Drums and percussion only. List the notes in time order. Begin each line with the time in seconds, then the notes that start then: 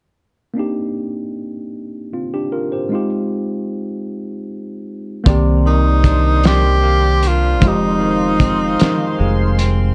5.26 kick, closed hi-hat
6.04 kick, closed hi-hat
6.43 snare, closed hi-hat
7.23 closed hi-hat
7.62 kick, closed hi-hat
8.40 kick, closed hi-hat
8.79 snare, closed hi-hat
9.59 closed hi-hat